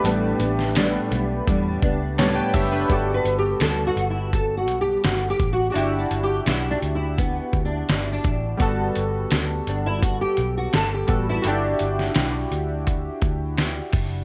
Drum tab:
HH |x-x-x-x-x-x-x-o-|x-x-x-x-x-x-x-x-|x-x-x-x-x-x-x-x-|x-x-x-x-x-x-x-x-|
SD |---oo-------o---|----o-------o---|----o-------o---|----o-------o---|
BD |--------o-o---o-|o-------o-----o-|--------o-o---o-|o-------o-----o-|

HH |x-x-x-x-x-x-x-o-|
SD |---oo-------o---|
BD |--------o-o---o-|